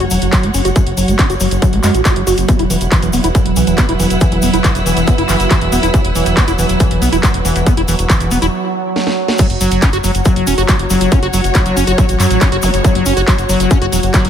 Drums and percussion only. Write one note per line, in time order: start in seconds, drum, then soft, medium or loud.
0.00 closed hi-hat medium
0.10 open hi-hat loud
0.10 shaker loud
0.22 closed hi-hat medium
0.22 shaker soft
0.33 kick loud
0.33 clap loud
0.33 closed hi-hat medium
0.33 shaker medium
0.43 closed hi-hat medium
0.54 open hi-hat loud
0.54 shaker medium
0.65 closed hi-hat medium
0.65 shaker soft
0.76 kick loud
0.76 closed hi-hat medium
0.76 shaker medium
0.87 closed hi-hat medium
0.97 open hi-hat loud
0.97 shaker loud
1.08 closed hi-hat medium
1.08 shaker soft
1.19 kick loud
1.19 clap loud
1.19 closed hi-hat medium
1.19 shaker soft
1.30 closed hi-hat medium
1.30 shaker soft
1.40 open hi-hat loud
1.40 shaker medium
1.51 closed hi-hat medium
1.51 shaker soft
1.62 kick loud
1.62 closed hi-hat medium
1.62 shaker medium
1.73 closed hi-hat medium
1.83 clap medium
1.83 open hi-hat loud
1.83 shaker medium
1.94 closed hi-hat medium
1.94 shaker soft
2.05 kick loud
2.05 clap loud
2.05 closed hi-hat medium
2.05 shaker medium
2.16 closed hi-hat medium
2.27 open hi-hat medium
2.27 shaker loud
2.37 closed hi-hat medium
2.37 shaker soft
2.48 kick loud
2.48 closed hi-hat medium
2.48 shaker medium
2.59 closed hi-hat medium
2.70 open hi-hat loud
2.70 shaker medium
2.81 closed hi-hat medium
2.81 shaker soft
2.92 kick loud
2.92 clap loud
2.92 closed hi-hat medium
2.92 shaker soft
3.02 closed hi-hat medium
3.02 shaker soft
3.13 open hi-hat medium
3.13 shaker medium
3.24 closed hi-hat medium
3.24 shaker soft
3.35 kick loud
3.35 closed hi-hat medium
3.35 shaker soft
3.46 closed hi-hat medium
3.56 open hi-hat loud
3.56 shaker medium
3.67 closed hi-hat medium
3.67 shaker soft
3.78 kick loud
3.78 clap loud
3.78 closed hi-hat medium
3.78 shaker medium
3.89 closed hi-hat medium
4.00 open hi-hat medium
4.00 shaker medium
4.10 closed hi-hat medium
4.10 shaker soft
4.21 kick loud
4.21 closed hi-hat medium
4.21 shaker medium
4.32 closed hi-hat medium
4.42 open hi-hat loud
4.42 shaker medium
4.53 closed hi-hat medium
4.53 shaker soft
4.64 kick loud
4.64 clap loud
4.64 closed hi-hat medium
4.64 shaker medium
4.75 closed hi-hat medium
4.75 shaker soft
4.86 open hi-hat medium
4.86 shaker medium
4.97 closed hi-hat medium
4.97 shaker soft
5.07 kick loud
5.07 closed hi-hat medium
5.07 shaker soft
5.18 closed hi-hat medium
5.29 clap medium
5.29 open hi-hat loud
5.29 shaker medium
5.40 closed hi-hat medium
5.40 shaker soft
5.51 kick loud
5.51 clap loud
5.51 closed hi-hat medium
5.51 shaker soft
5.61 closed hi-hat medium
5.72 open hi-hat medium
5.72 shaker medium
5.83 closed hi-hat medium
5.83 shaker soft
5.94 kick loud
5.94 closed hi-hat medium
5.94 shaker medium
6.05 closed hi-hat medium
6.15 open hi-hat loud
6.15 shaker medium
6.26 closed hi-hat medium
6.26 shaker soft
6.37 kick loud
6.37 clap loud
6.37 closed hi-hat medium
6.37 shaker soft
6.48 closed hi-hat medium
6.48 shaker soft
6.59 open hi-hat medium
6.59 shaker medium
6.69 closed hi-hat medium
6.69 shaker soft
6.80 kick loud
6.80 closed hi-hat medium
6.80 shaker soft
6.91 closed hi-hat medium
7.02 open hi-hat loud
7.02 shaker medium
7.13 closed hi-hat medium
7.13 shaker soft
7.23 kick loud
7.23 clap loud
7.23 closed hi-hat medium
7.23 shaker medium
7.34 closed hi-hat medium
7.45 open hi-hat medium
7.45 shaker medium
7.56 closed hi-hat medium
7.56 shaker soft
7.66 kick loud
7.66 closed hi-hat medium
7.66 shaker soft
7.77 closed hi-hat medium
7.88 open hi-hat loud
7.88 shaker medium
7.99 closed hi-hat medium
7.99 shaker soft
8.10 kick loud
8.10 clap loud
8.10 closed hi-hat medium
8.10 shaker medium
8.20 closed hi-hat medium
8.20 shaker soft
8.31 open hi-hat medium
8.31 shaker medium
8.42 closed hi-hat medium
8.42 shaker soft
8.96 snare medium
9.07 snare medium
9.28 snare medium
9.38 kick loud
9.38 closed hi-hat medium
9.38 crash loud
9.38 shaker soft
9.50 closed hi-hat medium
9.61 open hi-hat loud
9.61 shaker loud
9.71 closed hi-hat medium
9.71 shaker soft
9.82 kick loud
9.82 clap loud
9.82 closed hi-hat medium
9.82 shaker medium
9.93 closed hi-hat medium
9.93 shaker soft
10.04 open hi-hat medium
10.04 shaker medium
10.15 closed hi-hat medium
10.15 shaker soft
10.25 kick loud
10.25 closed hi-hat medium
10.25 shaker medium
10.36 closed hi-hat medium
10.47 open hi-hat loud
10.47 shaker medium
10.58 closed hi-hat medium
10.58 shaker soft
10.69 kick loud
10.69 clap loud
10.69 closed hi-hat medium
10.69 shaker medium
10.79 closed hi-hat medium
10.90 open hi-hat medium
10.90 shaker loud
11.01 closed hi-hat medium
11.01 shaker soft
11.12 kick loud
11.12 closed hi-hat medium
11.12 shaker soft
11.23 closed hi-hat medium
11.33 open hi-hat loud
11.33 shaker loud
11.44 closed hi-hat medium
11.44 shaker soft
11.54 kick loud
11.54 clap loud
11.54 closed hi-hat medium
11.54 shaker medium
11.65 closed hi-hat medium
11.65 shaker soft
11.77 open hi-hat medium
11.77 shaker medium
11.87 closed hi-hat medium
11.87 shaker soft
11.98 kick loud
11.98 closed hi-hat medium
11.98 shaker soft
12.09 closed hi-hat medium
12.09 shaker soft
12.20 clap medium
12.20 open hi-hat loud
12.20 shaker loud
12.30 closed hi-hat medium
12.30 shaker soft
12.41 kick loud
12.41 clap loud
12.41 closed hi-hat medium
12.41 shaker medium
12.52 closed hi-hat medium
12.62 open hi-hat loud
12.62 shaker loud
12.74 closed hi-hat medium
12.74 shaker soft
12.84 kick loud
12.84 closed hi-hat medium
12.84 shaker medium
12.95 closed hi-hat medium
13.06 open hi-hat loud
13.06 shaker loud
13.17 closed hi-hat medium
13.17 shaker soft
13.28 kick loud
13.28 clap loud
13.28 closed hi-hat medium
13.28 shaker medium
13.38 closed hi-hat medium
13.38 shaker soft
13.49 open hi-hat medium
13.49 shaker loud
13.60 closed hi-hat medium
13.60 shaker soft
13.71 kick loud
13.71 closed hi-hat medium
13.71 shaker soft
13.82 closed hi-hat medium
13.92 open hi-hat loud
13.92 shaker loud
14.03 closed hi-hat medium
14.03 shaker soft
14.14 kick loud
14.14 clap loud
14.14 closed hi-hat medium
14.14 shaker medium
14.25 closed hi-hat medium